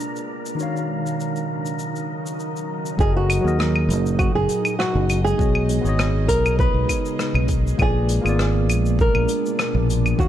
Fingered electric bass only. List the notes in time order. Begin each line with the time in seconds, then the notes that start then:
2.99 F#1
3.44 D#2
3.89 F#1
4.35 F#1
4.95 F#1
5.39 B1
5.84 G#1
6.29 B1
6.74 B1
7.34 B1
7.79 A#1
8.25 G#1
8.69 A#1
9.15 A#1
9.75 A#1
10.18 D#2